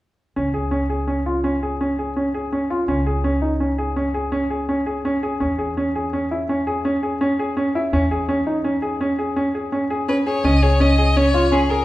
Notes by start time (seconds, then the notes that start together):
0.36 C#2 C#4
0.54 G#4
0.71 C#4
0.90 G#4
1.07 C#4
1.26 F4
1.44 C#4
1.63 G#4
1.81 C#4
1.99 G#4
2.16 C#4
2.34 G#4
2.52 C#4
2.70 F4
2.88 C#2 C#4
3.06 G#4
3.24 C#4
3.42 D#4
3.60 C#4
3.78 G#4
3.96 C#4
4.14 G#4
4.32 C#4
4.50 G#4
4.69 C#4
4.86 G#4
5.05 C#4
5.23 G#4
5.40 E2 C#4
5.58 G#4
5.77 C#4
5.95 G#4
6.13 C#4
6.31 E4
6.49 C#4
6.67 G#4
6.85 C#4
7.03 G#4
7.21 C#4
7.39 G#4
7.57 C#4
7.75 E4
7.92 E2 C#4
8.11 G#4
8.29 C#4
8.47 D#4
8.64 C#4
8.82 G#4
9.01 C#4
9.19 G#4
9.36 C#4
9.55 G#4
9.72 C#4
9.90 G#4
10.09 C#4 B4
10.26 G#4 C#5
10.44 C#2 C#4 D#5
10.62 G#4 C#5
10.80 C#4 D#5
10.98 G#4
11.16 C#4 C#5
11.34 F4
11.52 C#4 G#4
11.70 G#4 A#4